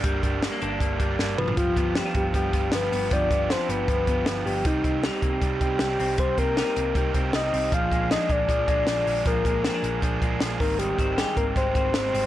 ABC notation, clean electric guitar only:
X:1
M:4/4
L:1/16
Q:1/4=156
K:Gphr
V:1 name="Clean electric guitar"
[G,B,D]2 G,2 A, B, D2 B,2 G,2 B,2 F,2 | F,2 =B,2 C D B,2 F,2 B,2 F,2 B,2 | F,2 =B,2 D2 B,2 F,2 B,2 F,2 B,2 | G,2 C2 E2 B, C G,2 C2 G,2 C2 |
G,2 C2 E2 C2 G,2 C2 G,2 C2 | F,2 A,2 D2 A,2 F,2 A,2 F,2 A,2 | F,2 A,2 C D A,2 F,2 A,2 F,2 E,2 | E,2 C2 G2 C2 A,2 C2 A,2 C2 |]